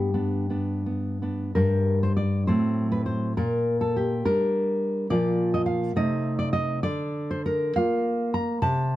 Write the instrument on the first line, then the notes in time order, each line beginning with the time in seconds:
nylon-string guitar
Already playing: G2 B3 G4
0.14 B3 D4
0.50 B3 D4
0.86 B3
1.22 B3 D4
1.55 G2 G3 D4 A#4
2.03 C5
2.17 D5
2.47 A2 F#3 C4 C5
2.92 B4
3.06 C5
3.37 A#2 A#4
3.81 A4
3.96 G4
4.25 G3 D4 A#4
5.10 A#2 F3 F4 D5
5.54 D#5
5.66 F5
5.96 C3 A3 D#4 D#5
6.39 D5
6.53 D#5
6.83 D3 D5
7.31 C5
7.46 A#4
7.76 A#3 F4 F5
8.34 A#5
8.62 C3 A5